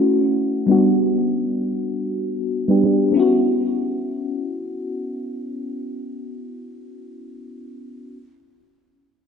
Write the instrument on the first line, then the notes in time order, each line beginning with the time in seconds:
fm electric piano
Already playing: A3 C#4 E4 F#4
0.67 G3 B3 D4
0.71 F#4
2.68 G3 B3 D4 G4
2.83 G3 B3 D4 G4
3.12 B3 C#4
3.17 E4 F#4